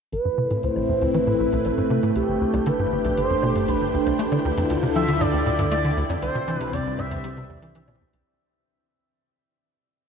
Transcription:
0.12 2.13 A1 medium
0.12 0.19 A1 medium
0.12 2.16 A2 medium
0.12 0.65 B4 loud
0.12 8.27 G5 medium
0.12 closed hi-hat medium
0.25 0.29 G2 medium
0.25 2.97 E4 medium
0.33 4.19 A3 medium
0.38 0.48 C3 medium
0.43 2.97 C4 medium
0.50 0.60 A2 medium
0.50 closed hi-hat soft
0.63 0.70 D2 medium
0.63 1.14 C5 loud
0.63 closed hi-hat medium
0.76 0.86 A1 medium
0.76 low woodblock soft
0.89 0.93 E2 medium
0.95 2.97 B4 medium
1.01 1.08 D2 medium
1.01 closed hi-hat soft
1.14 1.18 E3 medium
1.14 1.67 B4 loud
1.14 closed hi-hat medium
1.27 1.33 A2 medium
1.40 1.46 A1 medium
1.52 1.59 C2 loud
1.52 closed hi-hat soft
1.65 1.72 A1 medium
1.65 2.03 A4 loud
1.65 closed hi-hat medium
1.65 low woodblock soft
1.78 1.82 G2 medium
1.78 closed hi-hat soft
1.90 2.00 C3 medium
2.03 2.13 A2 medium
2.03 closed hi-hat soft
2.15 4.17 G1 medium
2.15 2.22 C2 medium
2.15 2.69 G4 loud
2.15 closed hi-hat medium
2.26 2.38 G1 medium
2.26 8.26 D4 medium
2.26 4.84 G4 medium
2.41 2.45 D2 medium
2.53 2.60 C2 medium
2.53 closed hi-hat medium
2.53 low woodblock soft
2.66 2.70 D3 medium
2.66 3.17 B4 loud
2.66 closed hi-hat medium
2.79 2.86 G2 medium
2.92 2.99 G1 medium
3.05 3.11 B1 medium
3.05 closed hi-hat soft
3.17 3.24 G1 medium
3.17 3.70 C5 loud
3.17 closed hi-hat medium
3.30 3.34 F2 medium
3.43 3.53 B2 medium
3.43 low woodblock soft
3.56 3.65 G2 medium
3.56 closed hi-hat soft
3.68 3.75 C2 medium
3.68 4.07 B4 medium
3.68 closed hi-hat medium
3.81 3.91 G1 medium
3.81 closed hi-hat soft
3.94 3.98 D2 medium
4.06 4.13 C2 loud
4.06 closed hi-hat soft
4.19 6.20 D2 medium
4.19 6.22 D3 medium
4.19 4.23 A3 medium
4.19 closed hi-hat medium
4.29 4.38 D3 medium
4.29 8.26 E4 medium
4.29 low woodblock soft
4.45 4.51 D2 loud
4.45 6.22 F4 medium
4.52 7.04 A4 medium
4.57 4.64 F2 medium
4.57 closed hi-hat medium
4.70 4.77 D2 medium
4.70 closed hi-hat medium
4.83 4.87 C3 medium
4.96 5.05 F3 medium
4.96 5.22 E5 loud
5.08 5.18 D3 medium
5.08 closed hi-hat soft
5.21 5.27 G2 medium
5.21 5.71 D5 loud
5.21 closed hi-hat medium
5.21 low woodblock soft
5.33 5.43 D2 medium
5.46 5.50 A2 medium
5.59 5.65 G2 loud
5.59 closed hi-hat soft
5.71 5.75 A3 medium
5.71 6.07 D5 loud
5.71 closed hi-hat medium
5.84 5.91 D3 medium
5.84 closed hi-hat soft
5.97 6.04 D2 loud
6.09 6.16 F2 loud
6.09 closed hi-hat soft
6.09 low woodblock soft
6.22 6.29 C2 medium
6.22 8.23 C2 medium
6.22 8.26 C3 medium
6.22 6.57 C5 medium
6.22 closed hi-hat medium
6.35 6.39 B2 medium
6.41 8.26 C4 medium
6.48 6.58 E3 medium
6.57 6.70 C3 medium
6.57 6.75 B4 medium
6.57 closed hi-hat medium
6.69 8.26 G4 medium
6.73 6.80 E2 medium
6.73 7.00 D5 loud
6.73 closed hi-hat medium
6.86 6.96 C2 medium
6.98 7.03 G2 medium
6.98 8.00 E5 loud
6.98 low woodblock soft
7.11 7.18 E2 medium
7.11 closed hi-hat medium
7.24 7.28 G3 medium
7.24 closed hi-hat medium
7.37 7.44 C3 medium
7.37 closed hi-hat soft
7.49 7.59 E2 loud
7.62 7.72 E3 medium
7.62 closed hi-hat medium
7.75 7.82 E3 loud
7.75 closed hi-hat medium
7.88 7.94 B2 medium
7.88 closed hi-hat soft
7.88 low woodblock soft
8.01 8.05 E2 medium
8.13 8.23 C2 medium
8.13 closed hi-hat soft

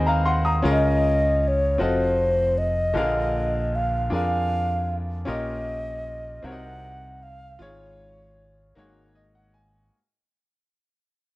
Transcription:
0.00 0.61 D#2 medium
0.00 0.67 G#2 medium
0.00 0.67 C4 medium
0.00 0.66 F#4 medium
0.00 0.64 G#4 medium
0.00 0.65 A#4 medium
0.00 0.67 B4 medium
0.00 0.48 C5 medium
0.00 0.65 D#5 medium
0.00 0.08 F5 medium
0.00 0.66 G#5 medium
0.06 0.25 F5 medium
0.06 0.25 A#5 medium
0.25 0.44 F#5 medium
0.25 0.44 C6 medium
0.45 0.82 A#5 medium
0.45 0.82 D#6 medium
0.62 1.76 C#2 loud
0.62 1.76 C#3 medium
0.62 1.59 C#4 medium
0.62 1.60 F4 medium
0.62 1.60 G#4 medium
0.62 1.60 A#4 medium
0.62 1.60 D#5 medium
0.62 1.43 D#5 medium
1.43 1.49 D#5 medium
1.48 1.83 C#5 medium
1.78 2.92 F1 medium
1.78 2.75 C4 medium
1.78 2.75 F4 medium
1.78 2.76 F#4 medium
1.78 2.76 A4 medium
1.78 2.60 C5 medium
1.78 2.76 D#5 medium
2.58 3.76 D#5 loud
2.94 4.08 A#1 loud
2.94 4.08 A#2 medium
2.94 3.91 D3 medium
2.94 3.91 F4 medium
2.94 3.92 G#4 medium
2.94 3.92 A#4 medium
2.94 3.92 F5 medium
3.75 4.13 F5 medium
4.10 5.24 F2 medium
4.10 5.07 D4 medium
4.10 5.07 F4 medium
4.10 5.07 G#4 medium
4.10 5.08 A#4 medium
4.10 4.96 F5 loud
4.10 5.08 G#5 medium
5.25 6.40 A#1 loud
5.25 6.40 A#2 medium
5.25 6.23 C#4 medium
5.25 6.23 F4 medium
5.25 6.23 G4 medium
5.25 6.24 A#4 medium
5.25 6.24 D#5 medium
5.29 6.47 D#5 loud
6.43 7.56 C2 medium
6.43 7.57 C3 medium
6.43 7.39 C4 medium
6.43 7.40 D#4 medium
6.43 7.40 F#4 medium
6.43 7.40 A#4 medium
6.43 6.52 C#5 medium
6.43 7.24 F#5 loud
6.52 7.44 D#5 medium
7.23 7.64 F5 loud
7.59 8.72 G#1 loud
7.59 8.73 G#2 medium
7.59 8.56 F4 medium
7.59 8.57 G#4 medium
7.59 8.57 C#5 medium
7.59 8.78 C#5 medium
8.75 9.89 G#1 loud
8.75 9.89 G#2 medium
8.75 9.72 A#3 medium
8.75 9.73 D#4 medium
8.75 9.73 F#4 medium
8.75 9.73 G#4 medium
8.75 9.74 C#5 medium
9.15 9.34 D#5 medium
9.35 9.53 F#5 medium
9.54 9.90 G#5 medium

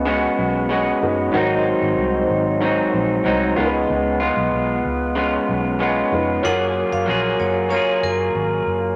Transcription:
0.00 0.26 C#2 medium
0.00 0.97 D#4 medium
0.00 0.98 F#4 medium
0.00 0.99 G#4 medium
0.00 1.00 B4 medium
0.05 0.68 C#3 medium
0.05 0.70 G#3 medium
0.05 0.71 B3 medium
0.05 0.72 F#4 medium
0.39 0.90 B1 medium
0.69 1.34 C#3 medium
0.69 1.34 G#3 medium
0.69 1.35 B3 medium
0.69 1.37 F#4 medium
1.01 1.28 F#1 medium
1.01 1.29 D#4 medium
1.01 1.31 F#4 medium
1.01 1.35 G#4 medium
1.01 1.35 B4 medium
1.31 1.72 G#1 loud
1.31 2.59 G#2 medium
1.31 2.61 F#3 medium
1.31 3.51 D#4 medium
1.31 3.52 F#4 medium
1.31 3.53 A#4 medium
1.35 2.62 C4 medium
1.35 2.63 D#4 loud
1.35 3.54 C5 medium
1.82 1.95 G#1 medium
1.97 2.23 C2 medium
2.30 2.81 G#1 medium
2.61 3.23 G#2 medium
2.61 3.24 F#3 medium
2.61 3.25 C4 medium
2.61 3.26 D#4 medium
2.94 3.19 A#1 medium
3.24 3.51 C2 loud
3.24 3.57 G#2 medium
3.24 3.57 F#3 medium
3.24 3.56 C4 medium
3.24 3.56 D#4 medium
3.55 3.83 C#2 medium
3.55 4.22 C#3 medium
3.55 4.22 G#3 medium
3.55 4.21 B3 medium
3.55 6.07 D#4 medium
3.55 6.08 F4 medium
3.55 4.19 F4 medium
3.55 6.08 G#4 medium
3.60 3.65 A#4 medium
3.66 6.12 B4 medium
3.90 4.28 C#2 loud
4.20 5.16 G#3 soft
4.20 5.16 B3 medium
4.20 5.18 F4 medium
4.37 4.50 B1 loud
4.53 4.78 B1 medium
4.85 5.36 C#2 medium
5.15 5.78 C#3 medium
5.15 5.80 G#3 medium
5.15 5.80 B3 medium
5.15 5.82 F4 medium
5.49 6.00 B1 medium
5.79 6.43 C#3 medium
5.79 6.43 G#3 medium
5.79 6.44 B3 medium
5.79 6.44 F4 medium
6.12 6.37 F1 medium
6.12 6.44 D#4 medium
6.12 6.42 F4 medium
6.12 6.44 G#4 medium
6.12 6.45 B4 medium
6.42 6.82 F#1 loud
6.42 7.06 F#3 medium
6.42 7.07 A#3 medium
6.42 8.94 C#4 medium
6.42 8.94 F4 medium
6.42 7.07 F4 medium
6.42 8.95 G#4 medium
6.42 7.08 G#4 medium
6.42 6.60 F#5 medium
6.47 8.96 A#4 medium
6.92 7.05 F#1 medium
6.92 7.07 F5 medium
7.06 7.33 A#1 medium
7.06 7.69 F#3 medium
7.06 7.71 A#3 medium
7.06 7.72 F4 medium
7.06 7.72 G#4 medium
7.39 7.78 F#1 medium
7.39 7.69 C#5 medium
7.69 8.96 F#3 medium
7.69 8.96 A#3 medium
7.69 8.01 C#5 medium
7.74 8.96 F4 medium
7.74 8.96 G#4 medium
8.03 8.28 F#1 loud
8.03 8.18 A#4 medium
8.35 8.60 G#1 medium
8.66 8.92 F#1 medium

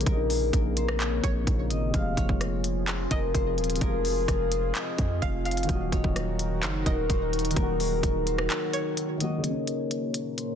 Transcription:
0.00 1.90 A#2 medium
0.00 1.41 C#3 medium
0.00 0.04 A#3 medium
0.00 1.90 A#3 medium
0.00 1.96 C#4 medium
0.00 1.96 G#4 medium
0.00 0.77 C5 medium
0.00 closed hi-hat medium
0.04 0.51 A#1 loud
0.04 1.45 C3 medium
0.04 1.43 A#3 medium
0.04 0.53 A#4 loud
0.04 kick loud
0.04 closed hi-hat medium
0.12 1.47 D#4 medium
0.29 2.57 G#4 medium
0.29 open hi-hat medium
0.53 1.21 A#1 loud
0.53 2.66 A#4 medium
0.53 kick loud
0.53 closed hi-hat medium
0.77 1.07 C5 medium
0.77 closed hi-hat medium
0.88 cross-stick loud
1.00 2.17 C#5 medium
1.00 clap loud
1.00 closed hi-hat medium
1.24 1.46 A#1 loud
1.24 1.46 C#5 medium
1.24 kick medium
1.24 closed hi-hat medium
1.44 1.72 A#1 loud
1.44 1.92 C#3 soft
1.44 1.93 A#3 soft
1.44 1.94 C4 soft
1.44 kick loud
1.44 closed hi-hat medium
1.50 1.95 F4 medium
1.70 1.93 G#1 loud
1.70 3.48 D#5 medium
1.70 closed hi-hat medium
1.89 3.74 C3 medium
1.89 3.77 F3 medium
1.94 2.16 F1 loud
1.94 5.65 F3 medium
1.94 3.79 G#3 medium
1.94 5.65 F4 medium
1.94 5.65 G#4 medium
1.94 3.60 F5 medium
1.94 kick loud
1.94 closed hi-hat medium
2.00 3.81 F4 medium
2.17 3.07 F1 loud
2.17 2.94 C#5 medium
2.17 kick loud
2.17 closed hi-hat medium
2.29 kick medium
2.41 cross-stick medium
2.41 closed hi-hat medium
2.64 closed hi-hat medium
2.88 3.34 C5 medium
2.88 clap loud
2.88 closed hi-hat medium
3.11 3.34 F1 loud
3.11 3.81 A#4 medium
3.11 3.34 D#5 medium
3.11 kick loud
3.11 closed hi-hat medium
3.35 3.59 F1 loud
3.35 4.52 C5 medium
3.35 kick loud
3.35 closed hi-hat medium
3.58 3.80 D#1 loud
3.58 closed hi-hat soft
3.64 closed hi-hat medium
3.70 closed hi-hat medium
3.76 5.62 C3 medium
3.76 5.64 F3 medium
3.76 closed hi-hat medium
3.81 4.26 F1 loud
3.81 5.66 G#3 medium
3.81 4.28 A#4 loud
3.81 kick loud
3.81 closed hi-hat medium
3.87 5.68 F4 medium
4.05 6.32 G#4 medium
4.05 open hi-hat medium
4.28 4.73 F1 loud
4.28 6.41 A#4 medium
4.28 kick loud
4.28 cross-stick medium
4.28 closed hi-hat medium
4.52 5.98 C5 medium
4.52 closed hi-hat medium
4.75 5.69 D#5 medium
4.75 clap loud
4.75 closed hi-hat medium
4.98 5.21 F2 loud
4.98 kick medium
4.98 closed hi-hat medium
5.22 5.67 F1 loud
5.22 5.44 F5 medium
5.22 kick loud
5.22 closed hi-hat medium
5.45 7.11 F5 medium
5.45 5.68 F5 medium
5.45 closed hi-hat soft
5.51 closed hi-hat medium
5.57 closed hi-hat medium
5.63 7.49 D#3 medium
5.63 closed hi-hat medium
5.67 5.91 D#1 loud
5.67 9.40 D#3 medium
5.67 7.52 F#3 medium
5.67 7.54 A#3 medium
5.67 9.40 D#4 medium
5.67 9.40 F#4 medium
5.67 9.40 A#4 loud
5.67 7.48 D#5 medium
5.67 kick loud
5.67 closed hi-hat medium
5.75 7.56 F#4 medium
5.92 6.04 D#1 loud
5.92 6.69 C#5 medium
5.92 kick medium
5.92 closed hi-hat medium
6.04 6.64 D#1 loud
6.04 kick medium
6.16 cross-stick medium
6.16 closed hi-hat medium
6.39 closed hi-hat medium
6.63 6.85 F#1 loud
6.63 7.10 C5 medium
6.63 clap loud
6.63 closed hi-hat medium
6.86 7.09 D#1 loud
6.86 7.56 A#4 medium
6.86 7.09 D#5 medium
6.86 kick medium
6.86 closed hi-hat medium
7.10 7.55 D#1 loud
7.10 8.26 C5 medium
7.10 kick loud
7.10 closed hi-hat medium
7.33 closed hi-hat soft
7.39 closed hi-hat medium
7.45 closed hi-hat medium
7.51 9.14 D#3 medium
7.51 9.16 F#3 medium
7.51 closed hi-hat medium
7.56 8.01 D#1 loud
7.56 9.18 A#3 medium
7.56 8.03 A#4 loud
7.56 kick loud
7.56 closed hi-hat medium
7.62 9.20 F#4 medium
7.80 10.07 G#4 medium
7.80 open hi-hat medium
8.03 8.48 D#1 loud
8.03 9.44 A#4 medium
8.03 kick loud
8.03 closed hi-hat medium
8.27 8.56 C5 medium
8.27 closed hi-hat medium
8.38 cross-stick loud
8.50 9.67 C#5 medium
8.50 clap loud
8.50 closed hi-hat medium
8.73 8.96 C#5 medium
8.73 closed hi-hat medium
8.97 closed hi-hat medium
9.18 9.43 D#3 medium
9.18 9.44 F#3 soft
9.18 9.42 A#3 medium
9.18 10.55 D#5 medium
9.18 closed hi-hat medium
9.24 9.46 F#4 medium
9.38 10.55 C#3 medium
9.44 10.55 A#2 medium
9.44 10.55 A#3 medium
9.44 10.55 A#4 medium
9.44 10.55 C#5 medium
9.44 closed hi-hat medium
9.49 10.55 C#4 medium
9.67 10.44 C#5 medium
9.67 closed hi-hat medium
9.91 closed hi-hat medium
10.14 closed hi-hat medium
10.38 10.55 C5 medium
10.38 closed hi-hat medium

